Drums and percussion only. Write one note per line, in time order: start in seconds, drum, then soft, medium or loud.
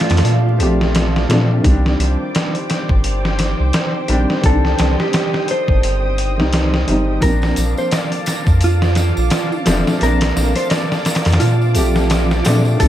0.00 snare medium
0.00 closed hi-hat medium
0.10 snare medium
0.10 closed hi-hat medium
0.17 snare medium
0.17 closed hi-hat medium
0.25 closed hi-hat medium
0.60 closed hi-hat medium
0.81 snare medium
0.95 snare loud
0.95 closed hi-hat medium
1.16 snare medium
1.30 snare loud
1.30 closed hi-hat medium
1.64 kick loud
1.64 closed hi-hat medium
1.86 snare medium
2.00 closed hi-hat medium
2.35 snare loud
2.35 closed hi-hat medium
2.55 closed hi-hat soft
2.70 snare medium
2.70 closed hi-hat medium
2.89 kick loud
3.04 closed hi-hat medium
3.25 snare medium
3.39 snare medium
3.39 closed hi-hat medium
3.73 snare loud
3.73 closed hi-hat medium
4.08 closed hi-hat medium
4.30 snare soft
4.43 kick loud
4.43 closed hi-hat medium
4.65 snare soft
4.79 snare loud
4.79 closed hi-hat medium
5.00 snare medium
5.13 snare loud
5.13 closed hi-hat medium
5.34 snare medium
5.48 closed hi-hat medium
5.68 kick loud
5.83 closed hi-hat medium
6.18 closed hi-hat medium
6.40 snare medium
6.53 snare loud
6.53 closed hi-hat medium
6.74 snare medium
6.88 closed hi-hat medium
7.22 kick loud
7.22 closed hi-hat medium
7.22 tambourine soft
7.42 snare medium
7.42 tambourine soft
7.56 closed hi-hat medium
7.56 tambourine medium
7.77 tambourine soft
7.91 snare loud
7.91 closed hi-hat medium
7.91 tambourine medium
8.12 closed hi-hat soft
8.12 tambourine soft
8.26 snare medium
8.26 closed hi-hat medium
8.26 tambourine loud
8.46 kick loud
8.46 tambourine soft
8.61 closed hi-hat medium
8.61 tambourine soft
8.82 snare medium
8.82 tambourine soft
8.95 snare medium
8.95 closed hi-hat medium
8.95 tambourine medium
9.17 tambourine soft
9.17 triangle medium
9.30 snare loud
9.30 closed hi-hat medium
9.30 tambourine soft
9.52 tambourine soft
9.66 snare loud
9.66 closed hi-hat medium
9.66 tambourine medium
9.87 snare soft
9.87 tambourine soft
10.01 closed hi-hat medium
10.01 tambourine medium
10.21 snare loud
10.21 closed hi-hat medium
10.21 tambourine soft
10.37 snare medium
10.37 tambourine medium
10.56 closed hi-hat medium
10.56 tambourine soft
10.70 snare loud
10.70 closed hi-hat medium
10.70 tambourine soft
10.92 snare medium
10.92 tambourine soft
11.05 snare medium
11.05 closed hi-hat medium
11.05 tambourine medium
11.15 snare loud
11.15 closed hi-hat medium
11.25 snare medium
11.25 closed hi-hat medium
11.25 tambourine soft
11.32 snare medium
11.32 closed hi-hat medium
11.40 closed hi-hat medium
11.40 tambourine medium
11.61 tambourine soft
11.75 closed hi-hat medium
11.75 tambourine medium
11.95 snare medium
11.95 tambourine soft
12.10 snare loud
12.10 closed hi-hat medium
12.10 tambourine soft
12.31 snare medium
12.31 tambourine soft
12.45 snare loud
12.45 closed hi-hat medium
12.45 tambourine medium
12.65 tambourine soft
12.80 kick loud
12.80 closed hi-hat medium
12.80 tambourine soft